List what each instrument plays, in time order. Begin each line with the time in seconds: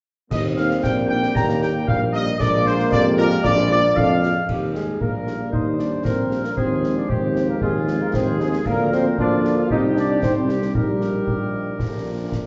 0.31 tuba D#2, trombone section G3 A#3, euphonium C4, trumpet section D#5, woodwind section D#5, concert bass drum, snare, crash
0.57 french horn section A#3 D#4 G4, woodwind section F5, trumpet section F5, snare
0.70 snare
0.83 tuba A#1, trumpet section G5, woodwind section G5, concert bass drum, snare
1.09 french horn section A#3 D#4 G4, trumpet section G5, woodwind section G5
1.23 snare
1.35 tuba D#2, euphonium A#3, woodwind section A#5, trumpet section A#5, concert bass drum, snare
1.49 snare
1.62 french horn section A#3 D#4 G4, woodwind section G5, trumpet section G5, snare
1.87 tuba A#1, woodwind section F5, trumpet section F5, concert bass drum
2.13 french horn section A#3 D#4 G4, woodwind section D#5, trumpet section D#5, snare
2.39 tuba A#1, trombone section G#3 A#3, woodwind section D5, trumpet section D5, concert bass drum, snare, crash
2.66 french horn section A#3 F4 G#4, woodwind section C5, trumpet section C5, snare
2.79 snare
2.92 tuba F2, euphonium G4, trumpet section D5, woodwind section D5, concert bass drum, snare
3.18 french horn section A#3 F4 G#4, trumpet section A#4, woodwind section A#4
3.32 snare
3.44 tuba A#1, euphonium F4, woodwind section D5, trumpet section D5, concert bass drum, snare
3.58 snare
3.71 french horn section A#3 F4 G#4, woodwind section D5, trumpet section D5, snare
3.96 tuba F2, euphonium D4, woodwind section F5, trumpet section F5, concert bass drum
4.23 french horn section A#3 F4 G#4, snare
4.47 tuba D#2, trombone section G3 A#3, euphonium G3, trumpet section G4, concert bass drum, crash
4.74 euphonium G#3, french horn section A#3 D#4 G4, trumpet section G#4, snare
5.00 tuba A#1, euphonium A#3, trumpet section A#4, woodwind section A#4, concert bass drum
5.27 french horn section A#3 D#4 G4, snare
5.52 tuba D#2, euphonium D#4, woodwind section C5, trumpet section D#5, concert bass drum
5.79 french horn section A#3 D#4 G4, euphonium D4, trumpet section D5, snare
6.05 tuba A#1, euphonium C4, woodwind section A#4, trumpet section C5, concert bass drum, snare
6.31 french horn section A#3 D#4 G4, snare
6.44 euphonium A#3, trumpet section A#4, snare
6.57 tuba D#2, trombone section F3 G#3, euphonium C4, woodwind section G#4, trumpet section C5, concert bass drum
6.83 french horn section G#3 C4 F4, snare
6.96 euphonium D4, trumpet section D5
7.09 tuba D#2, euphonium C4, woodwind section G4, trumpet section C5, concert bass drum
7.35 french horn section G#3 C4 F4, snare
7.49 euphonium A#3, trumpet section A#4
7.61 tuba D#2, euphonium G#3, woodwind section F4, trumpet section G#4, concert bass drum
7.88 french horn section G#3 C4 F4, snare
8.01 euphonium A#3, trumpet section A#4
8.14 tuba D#2, euphonium C4, woodwind section G#4, trumpet section C5, concert bass drum, snare
8.39 euphonium G#3, french horn section G#3 C4 F4, trumpet section G#4, snare
8.53 snare
8.66 tuba D2, french horn section F3 A#3 F4, trombone section F3 A#3, euphonium A#3, woodwind section A#4, trumpet section A#4, concert bass drum, crash
8.92 euphonium C4, trumpet section C5, snare
9.18 tuba D2, french horn section F3 A#3 F4, trombone section F3 A#3, euphonium D4, woodwind section F4, trumpet section D5, concert bass drum
9.45 snare
9.58 euphonium F4, trumpet section F5
9.70 tuba C2, trombone section G3 C4, french horn section G3 C4 D#4, euphonium D#4, woodwind section G4, trumpet section D#5, concert bass drum
9.97 euphonium D4, trumpet section D5, snare
10.22 tuba C2, trombone section G3 C4, french horn section G3 C4 D#4, euphonium C4, trumpet section C5, concert bass drum, snare
10.49 euphonium G3, french horn section D4, trumpet section G4, snare
10.62 snare
10.75 tuba A#1, trombone section G3 D#4, euphonium G3, french horn section G3 D#4, trumpet section G4, woodwind section A#4, concert bass drum
11.01 snare
11.27 tuba A#1, concert bass drum
11.79 tuba A#1, trombone section F3 D4, french horn section F3 A#3 D4, concert bass drum, snare
12.31 tuba A#1, concert bass drum, snare